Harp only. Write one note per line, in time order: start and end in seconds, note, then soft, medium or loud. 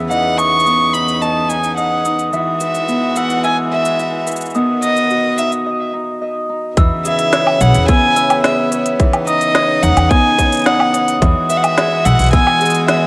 0.00 0.66 B3 medium
0.00 1.82 G#4 medium
0.00 2.60 B4 medium
0.10 2.32 E3 medium
0.10 1.21 D#5 medium
0.39 0.93 D#4 medium
0.66 2.88 B3 medium
0.94 1.49 D#4 medium
1.21 1.77 D#5 medium
1.49 2.05 D#4 medium
1.77 2.39 D#5 medium
2.05 3.50 D#4 medium
2.33 4.60 E3 medium
2.33 3.43 E5 medium
2.61 3.16 B4 medium
2.88 4.55 B3 medium
3.16 3.71 B4 soft
3.44 3.99 E5 medium
3.72 4.27 B4 medium
3.99 4.62 E5 medium
4.27 7.75 B4 medium
4.55 7.88 B3 medium
4.55 5.66 D#5 medium
4.83 5.38 D#4 medium
5.11 7.54 F#4 medium
5.38 5.93 D#4 medium
5.66 6.21 D#5 medium
5.93 6.49 D#4 medium
6.21 8.00 D#5 medium
6.49 9.05 D#4 medium
6.77 8.98 E3 medium
7.05 7.60 G#4 medium
7.33 8.16 C#5 medium
7.61 8.43 G#4 medium
7.88 10.10 B3 medium
8.16 8.71 C#5 medium
8.44 10.71 G#4 medium
8.71 9.54 C#5 medium
8.99 11.22 E3 medium
9.27 9.82 D#4 medium
9.55 10.38 C#5 medium
9.82 10.66 D#4 medium
10.10 12.33 B3 medium
10.38 10.94 C#5 medium
10.66 13.07 D#4 medium
10.94 12.85 C#5 medium
11.22 13.07 E3 medium
11.49 12.04 B4 medium
11.77 12.61 G#4 medium
12.05 12.89 B4 medium
12.33 13.07 B3 medium
12.61 13.07 G#4 medium
12.89 13.07 B4 medium